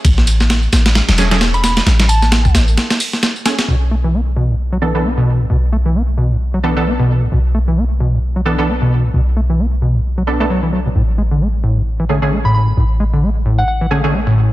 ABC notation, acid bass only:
X:1
M:4/4
L:1/16
Q:"Swing 16ths" 1/4=132
K:Bdor
V:1 name="Acid bass" clef=bass
z16 | z16 | B,, z A, E, B, z B,, A,, z F, E, E, B, B,,2 A,, | B,, z A, E, B, z B,, A,, z F, E, E, B, B,,2 A,, |
B,, z A, E, B, z B,, A,, z F, E, E, B, B,,2 A,, | B,, z A, E, B, z B,, A,, z F, z A, F, E, F, B,, | A,, z G, D, A, z A,, G,, z E, D, D, A, A,,2 G,, | A,, z G, D, A, z A,, G,, z E, D, D, A, A,,2 G,, |]